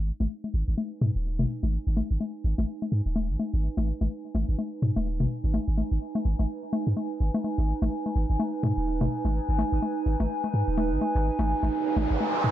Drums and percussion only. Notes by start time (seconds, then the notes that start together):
0.20 high conga
0.44 high conga
0.78 high conga
1.01 mid tom, high conga
1.39 mid tom, high conga
1.63 high conga
1.97 high conga
2.20 high conga
2.58 high conga
2.82 high conga
3.16 high conga
3.39 high conga
3.77 high conga
4.01 high conga
4.35 high conga
4.59 high conga
4.82 mid tom
4.96 high conga
5.20 mid tom, high conga
5.54 high conga
5.78 high conga
6.15 high conga
6.39 high conga
6.73 high conga
6.97 high conga
7.34 high conga
7.44 high conga
7.82 high conga
8.06 high conga
8.40 high conga
8.63 mid tom, high conga
9.01 mid tom, high conga
9.25 high conga
9.59 high conga
9.82 high conga
10.20 high conga
10.44 high conga
10.78 high conga
11.01 high conga
11.39 high conga
11.63 high conga
11.97 high conga
12.21 high conga
12.44 mid tom